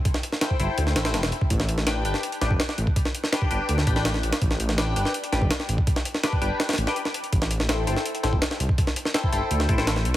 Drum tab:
HH |x---x---x---x---x---x-x-x-x-x---|x---x---x---x---x-x-x---x---x---|x---x---x---x---x---x---x---x-x-|x---x---x---x---x-x-x---x---x---|
SD |--o---o-o---------o-o-o-o-o-----|--o---o-o-----o-----o---o-o-----|--o---o-o---------o---o-o-o---o-|--o---o-o-----o-----o---o-o-----|
BD |o---------o-------------------o-|o---------------------o-------o-|o---------o---------o-----------|o---------------------o-------o-|

HH |x---x---x---x---x-xxx---x---x-x-|x---x---x---x---x-x-x---x---x---|x---x---x---x---x---x---x---x---|
SD |--o---o-o-------o-oo--o---o-----|--o---o-o-----o-----o---o-o-----|--o---o-o---------o---o-o-o-----|
BD |o---------o---------------------|o---------------------o-------o-|o---------o---------o-----------|